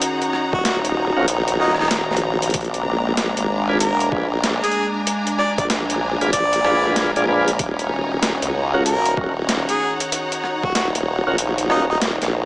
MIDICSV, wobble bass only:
0, 0, Header, 1, 2, 480
1, 0, Start_track
1, 0, Key_signature, -6, "minor"
1, 0, Tempo, 631579
1, 12, Time_signature, 4, 2, 24, 8
1, 9464, End_track
2, 0, Start_track
2, 0, Title_t, "Wobble bass"
2, 0, Program_c, 0, 39
2, 403, Note_on_c, 0, 27, 96
2, 859, Note_off_c, 0, 27, 0
2, 884, Note_on_c, 0, 34, 97
2, 1199, Note_off_c, 0, 34, 0
2, 1214, Note_on_c, 0, 27, 88
2, 1580, Note_off_c, 0, 27, 0
2, 1602, Note_on_c, 0, 34, 101
2, 1918, Note_off_c, 0, 34, 0
2, 1933, Note_on_c, 0, 34, 98
2, 2158, Note_off_c, 0, 34, 0
2, 2173, Note_on_c, 0, 34, 96
2, 2539, Note_off_c, 0, 34, 0
2, 2562, Note_on_c, 0, 32, 98
2, 2638, Note_off_c, 0, 32, 0
2, 2652, Note_on_c, 0, 32, 96
2, 3118, Note_off_c, 0, 32, 0
2, 3131, Note_on_c, 0, 34, 87
2, 3498, Note_off_c, 0, 34, 0
2, 4242, Note_on_c, 0, 34, 95
2, 4698, Note_off_c, 0, 34, 0
2, 4722, Note_on_c, 0, 32, 102
2, 4798, Note_off_c, 0, 32, 0
2, 4813, Note_on_c, 0, 34, 101
2, 5038, Note_off_c, 0, 34, 0
2, 5053, Note_on_c, 0, 34, 91
2, 5419, Note_off_c, 0, 34, 0
2, 5443, Note_on_c, 0, 34, 99
2, 5758, Note_off_c, 0, 34, 0
2, 5771, Note_on_c, 0, 27, 100
2, 5998, Note_off_c, 0, 27, 0
2, 6011, Note_on_c, 0, 27, 96
2, 6378, Note_off_c, 0, 27, 0
2, 6403, Note_on_c, 0, 37, 97
2, 6478, Note_off_c, 0, 37, 0
2, 6492, Note_on_c, 0, 37, 101
2, 6958, Note_off_c, 0, 37, 0
2, 6972, Note_on_c, 0, 27, 93
2, 7339, Note_off_c, 0, 27, 0
2, 8082, Note_on_c, 0, 27, 97
2, 8538, Note_off_c, 0, 27, 0
2, 8564, Note_on_c, 0, 34, 99
2, 8878, Note_off_c, 0, 34, 0
2, 8893, Note_on_c, 0, 27, 84
2, 9260, Note_off_c, 0, 27, 0
2, 9285, Note_on_c, 0, 34, 100
2, 9464, Note_off_c, 0, 34, 0
2, 9464, End_track
0, 0, End_of_file